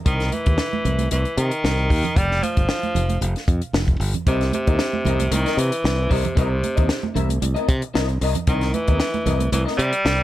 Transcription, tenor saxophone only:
0.06 0.34 D#3 medium
0.33 1.11 E3 medium
1.11 1.40 E3 medium
1.38 2.18 D#3 medium
2.17 2.44 G3 loud
2.43 3.48 F3 loud
4.27 4.51 C3 medium
4.54 5.34 C3 loud
5.33 5.60 D#3 medium
5.58 6.13 E3 loud
6.12 6.37 C3 medium
6.38 7.12 C3 medium
8.47 8.75 D#3 medium
8.73 9.51 E3 loud
9.52 9.64 E3 medium
9.77 10.23 G3 loud

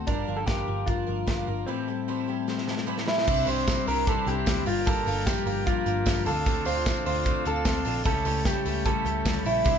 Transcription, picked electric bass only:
0.07 0.24 G1 medium
0.28 0.44 G1 medium
0.48 0.64 G1 medium
0.68 0.84 G1 medium
0.88 1.04 G1 medium
1.08 1.24 G1 medium
1.27 1.44 G1 medium
1.48 1.64 G1 medium
3.28 3.44 C2 medium
3.47 3.72 C2 medium
3.88 4.12 C2 medium
4.27 4.43 C2 loud
4.47 4.64 D2 medium
4.67 5.00 G1 loud
5.07 5.32 G1 medium
5.46 5.71 G1 loud
5.86 6.03 G1 loud
6.06 6.28 G1 medium
6.27 6.60 D2 loud
6.67 6.91 D2 loud
7.07 7.31 D2 loud
7.47 7.63 D2 loud
7.65 7.82 D2 medium
7.86 8.02 A#1 medium
8.06 8.22 C#2 loud
8.26 8.50 C#2 medium
8.65 8.90 C#2 medium
9.05 9.22 C#2 medium
9.26 9.42 D2 medium
9.45 9.62 A#1 medium
9.66 9.79 C2 loud

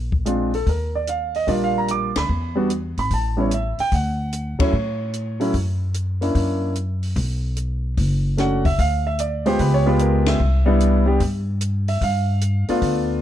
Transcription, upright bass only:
0.00 0.62 A#1 medium
0.66 1.43 D#2 medium
1.47 2.11 A#1 medium
2.16 2.28 D2 medium
2.29 2.93 E2 medium
2.97 3.10 G#1 medium
3.11 3.74 A1 medium
3.78 muted upright bass stroke soft
3.92 4.56 D2 medium
4.73 5.50 A2 medium
5.54 6.31 F#2 medium
6.35 7.12 F#2 medium
7.16 7.93 B1 medium
7.97 8.74 F#1 medium
8.79 9.55 D2 medium
9.59 10.36 C#2 medium
10.40 11.17 C2 medium
11.20 11.97 G2 medium
12.01 12.65 G2 medium
12.69 muted upright bass stroke soft
12.82 13.22 D2 medium

